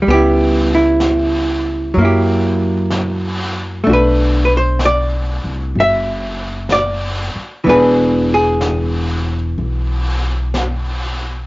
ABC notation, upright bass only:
X:1
M:4/4
L:1/8
Q:"Swing" 1/4=63
K:Em
V:1 name="Upright bass" clef=bass
^C,,4 F,,4 | B,,,3 C,, F,,,3 z | E,,,4 B,,,4 |]